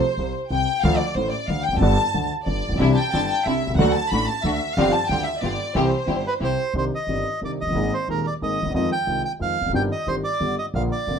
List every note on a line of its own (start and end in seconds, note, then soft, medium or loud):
0.00 0.34 C5 medium
0.18 0.31 C2 soft
0.18 0.32 C2 soft
0.18 0.32 C3 soft
0.51 0.64 C2 medium
0.51 0.64 C2 soft
0.51 0.64 C3 soft
0.51 0.81 G5 medium
0.82 0.97 D2 medium
0.82 0.98 D2 medium
0.82 0.98 D3 medium
0.82 0.97 F3 medium
0.82 0.97 A3 medium
0.82 0.98 D4 medium
0.82 0.98 A4 medium
0.82 0.99 F5 medium
0.98 1.15 D5 medium
1.14 1.29 A1 medium
1.14 1.30 A1 medium
1.14 1.30 A2 soft
1.14 1.31 C5 medium
1.31 1.48 D5 medium
1.48 1.62 D2 medium
1.48 1.63 D2 soft
1.48 1.63 D3 soft
1.48 1.64 F5 medium
1.64 1.81 G5 medium
1.69 1.72 E1 soft
1.69 1.74 E2 soft
1.73 1.76 F1 medium
1.73 1.80 F#1 medium
1.73 1.78 F2 soft
1.77 1.95 G1 medium
1.77 1.81 F#2 medium
1.77 1.95 B3 medium
1.77 2.26 A5 medium
1.82 1.95 G1 medium
1.82 1.95 G2 medium
1.82 1.95 G3 medium
1.82 1.95 D4 medium
1.82 1.95 A4 medium
2.14 2.28 D2 soft
2.14 2.28 D2 medium
2.14 2.28 D3 soft
2.44 2.61 G1 medium
2.44 2.61 G1 soft
2.44 2.61 G2 soft
2.44 2.76 D5 medium
2.69 2.72 A1 soft
2.69 2.71 A1 soft
2.69 2.76 A#1 soft
2.69 2.75 A#1 soft
2.76 2.79 B1 medium
2.76 2.80 B1 soft
2.76 2.94 C2 medium
2.76 2.94 C3 medium
2.76 2.94 E3 medium
2.76 2.94 C4 soft
2.76 2.94 D4 medium
2.76 2.94 G4 medium
2.76 2.92 E5 medium
2.80 2.94 C2 medium
2.80 2.94 C4 medium
2.80 2.94 D4 medium
2.80 2.94 E4 medium
2.93 3.13 G5 medium
2.93 2.97 A5 medium
3.11 3.27 G1 soft
3.11 3.27 G2 soft
3.11 3.27 C4 soft
3.11 3.27 D4 soft
3.11 3.27 E4 soft
3.11 3.29 A5 medium
3.29 3.46 G5 medium
3.44 3.60 C2 medium
3.44 3.60 C2 soft
3.44 3.60 C3 soft
3.44 3.60 C4 soft
3.44 3.60 D4 soft
3.44 3.61 E4 soft
3.44 3.78 E5 medium
3.67 3.71 B1 soft
3.67 3.70 B1 soft
3.67 3.74 C2 soft
3.71 3.75 C2 medium
3.71 3.79 C#2 medium
3.75 3.78 C#2 medium
3.75 3.93 D2 medium
3.75 3.93 D3 medium
3.75 3.93 F#3 medium
3.75 3.93 A3 medium
3.75 3.93 D4 medium
3.75 3.93 A4 medium
3.75 3.93 F#5 medium
3.79 3.93 A3 medium
3.79 3.93 D4 medium
3.79 3.93 F#4 medium
3.93 4.11 A5 medium
4.10 4.26 A1 medium
4.10 4.26 A1 soft
4.10 4.26 A2 medium
4.10 4.26 A3 soft
4.10 4.26 D4 soft
4.10 4.26 F#4 medium
4.10 4.27 B5 medium
4.27 4.44 A5 medium
4.42 4.58 D2 medium
4.42 4.58 D2 soft
4.42 4.58 D3 soft
4.42 4.58 A3 soft
4.42 4.59 D4 soft
4.42 4.59 F#4 medium
4.42 4.76 E5 medium
4.74 4.91 G1 medium
4.74 4.91 G2 medium
4.74 4.91 F3 medium
4.74 4.91 C4 medium
4.74 4.91 D4 medium
4.74 4.91 F4 medium
4.74 4.91 G4 medium
4.74 4.92 F5 medium
4.78 4.91 G4 medium
4.92 5.09 A5 medium
5.08 5.23 D2 medium
5.08 5.24 D2 soft
5.08 5.25 D3 soft
5.08 5.24 C4 soft
5.08 5.24 F4 soft
5.08 5.24 G4 medium
5.08 5.25 G5 medium
5.24 5.41 E5 medium
5.40 5.56 G1 medium
5.40 5.56 G1 soft
5.40 5.57 G2 soft
5.40 5.56 B3 soft
5.40 5.56 F4 soft
5.40 5.56 G4 medium
5.40 5.74 D5 medium
5.75 5.89 C2 medium
5.75 5.89 C3 medium
5.75 5.89 E3 medium
5.75 5.89 G3 medium
5.75 5.89 C4 medium
5.75 5.89 E4 medium
5.75 5.89 G4 medium
5.75 6.41 C5 medium
6.07 6.21 G1 medium
6.07 6.22 G1 soft
6.07 6.22 G2 soft
6.07 6.21 C4 soft
6.07 6.21 E4 soft
6.07 6.22 G4 soft
6.27 6.34 B4 medium
6.40 6.55 C2 medium
6.40 6.56 C2 soft
6.40 6.56 C3 soft
6.40 6.55 C4 soft
6.40 6.55 E4 soft
6.40 6.55 G4 soft
6.40 6.74 C5 medium
6.74 6.88 C2 medium
6.74 6.89 C2 soft
6.74 6.89 C3 soft
6.74 6.89 D#3 soft
6.74 6.89 C4 soft
6.74 6.89 D4 soft
6.74 6.89 G4 soft
6.78 6.85 C5 soft
6.95 7.40 D#5 medium
7.07 7.22 G1 soft
7.07 7.23 G1 soft
7.07 7.23 G2 soft
7.07 7.22 D#3 soft
7.07 7.23 C4 soft
7.07 7.23 D4 soft
7.07 7.23 G4 soft
7.42 7.56 C2 soft
7.42 7.56 C3 soft
7.42 7.56 D#3 soft
7.42 7.56 C4 soft
7.42 7.56 D4 soft
7.42 7.56 G4 soft
7.42 7.52 D5 soft
7.61 7.66 F1 soft
7.61 7.67 F1 soft
7.61 7.94 D#5 medium
7.66 7.70 F#1 soft
7.66 7.72 F#1 soft
7.71 7.74 G1 soft
7.71 7.76 G1 soft
7.75 7.89 G#1 medium
7.75 7.89 G#2 medium
7.75 7.89 D#3 soft
7.75 7.89 G#3 soft
7.75 7.89 A#3 soft
7.75 7.89 G#4 soft
7.94 8.08 C5 medium
8.08 8.22 D#1 soft
8.08 8.22 D#2 soft
8.08 8.22 D#3 soft
8.08 8.22 G#3 soft
8.08 8.23 A#3 soft
8.08 8.23 G#4 soft
8.08 8.26 A#4 medium
8.27 8.34 D5 medium
8.42 8.55 G#1 soft
8.42 8.56 G#1 soft
8.42 8.56 G#2 soft
8.42 8.56 D#3 soft
8.42 8.56 G#3 soft
8.42 8.56 A#3 soft
8.42 8.56 G#4 soft
8.42 8.73 D#5 medium
8.62 8.66 D2 soft
8.62 8.70 D#2 soft
8.66 8.70 D#2 soft
8.70 8.74 E2 soft
8.70 8.73 E2 medium
8.70 8.88 F2 medium
8.74 8.88 F2 medium
8.74 8.88 D#3 soft
8.74 8.88 F3 medium
8.74 8.88 G#3 soft
8.74 8.88 C4 soft
8.74 8.89 F4 medium
8.74 8.90 D#5 medium
8.92 9.22 G5 medium
9.07 9.21 C2 soft
9.07 9.21 C3 soft
9.07 9.21 D#3 soft
9.07 9.21 G#3 soft
9.07 9.21 C4 soft
9.07 9.21 F4 soft
9.25 9.32 G5 medium
9.39 9.54 F2 soft
9.39 9.54 D#3 soft
9.39 9.54 F3 soft
9.39 9.54 G#3 soft
9.39 9.54 C4 soft
9.39 9.54 F4 soft
9.39 9.72 F5 medium
9.61 9.65 E1 soft
9.61 9.65 E2 soft
9.61 9.69 F2 soft
9.66 9.69 F1 soft
9.66 9.73 F#1 soft
9.66 9.74 F#2 soft
9.73 9.87 G1 medium
9.73 9.88 G2 medium
9.73 9.87 D#3 soft
9.73 9.87 G3 soft
9.73 9.88 C4 soft
9.73 9.88 G4 soft
9.73 9.82 G5 medium
9.92 10.08 D#5 medium
10.06 10.21 G1 soft
10.06 10.21 G2 soft
10.06 10.21 D#3 soft
10.06 10.21 G3 soft
10.06 10.21 C4 soft
10.06 10.21 G4 soft
10.06 10.15 C5 medium
10.24 10.55 D5 medium
10.40 10.55 G1 soft
10.40 10.55 G2 soft
10.40 10.55 D3 soft
10.40 10.55 G3 soft
10.40 10.55 B3 soft
10.40 10.55 G4 soft
10.59 10.66 D#5 medium
10.74 10.88 A#1 medium
10.74 10.89 A#1 medium
10.74 10.89 A#2 medium
10.74 10.89 D3 soft
10.74 10.89 F3 soft
10.74 10.89 A#3 soft
10.74 10.89 F4 soft
10.74 10.83 F5 medium
10.92 11.19 D5 medium
11.07 11.19 F1 soft
11.07 11.19 F2 soft
11.07 11.19 D3 soft
11.07 11.19 F3 soft
11.07 11.19 A#3 soft
11.07 11.19 F4 soft